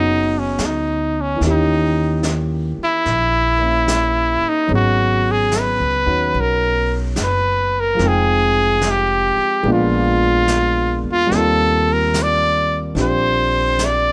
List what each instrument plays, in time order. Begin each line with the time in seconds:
Already playing: upright bass F#1, grand piano F#3 B3 C#4 F#4 G#4 D#5, trumpet D#4
0.39 trumpet C#4
0.58 upright bass D2, snare, hi-hat pedal
0.65 trumpet D#4
1.21 trumpet C#4
1.36 grand piano E3 A#3
1.41 upright bass D#2, grand piano D#3 C#4, brush sweep, snare
1.47 grand piano G4
1.51 trumpet D#4
2.23 snare, hi-hat pedal
2.78 muted upright bass stroke
2.84 trumpet E4
3.05 upright bass A#1, brush sweep, snare
3.59 grand piano A#3 C#4 E5
3.88 snare, hi-hat pedal
4.41 muted upright bass stroke
4.49 trumpet D#4
4.67 upright bass G#1, grand piano F#3 B3 C#4 D#4 G#4, brush sweep
4.76 trumpet F#4
5.32 trumpet G#4
5.51 snare, hi-hat pedal
5.60 trumpet B4
5.80 upright bass C#2
6.06 upright bass D#2, grand piano C#4 D#4 F#4 C#5
6.33 upright bass B1, brush sweep
6.41 trumpet A#4
7.16 upright bass F#1, snare, hi-hat pedal
7.23 trumpet B4
7.80 trumpet A#4
7.94 grand piano F3 G#3
7.99 upright bass F1, grand piano C4 D#4, brush sweep, snare
8.05 trumpet G#4, grand piano G5
8.81 snare, hi-hat pedal
8.91 trumpet G4
9.37 muted upright bass stroke
9.63 upright bass A#1, grand piano G#3 A#3 B3 D4, brush sweep
9.68 grand piano F4
9.73 trumpet F4
10.48 snare, hi-hat pedal
11.03 upright bass E2
11.12 trumpet F4
11.27 upright bass D#2, grand piano G3 A#3
11.31 grand piano C4 D#4, brush sweep, snare
11.36 grand piano F4, trumpet A4
11.93 trumpet A#4
12.14 snare, hi-hat pedal
12.23 trumpet D5
12.95 upright bass A#1, grand piano C4 D4 F4 G4, brush sweep, snare
13.01 trumpet C5
13.79 snare, hi-hat pedal
13.85 trumpet D5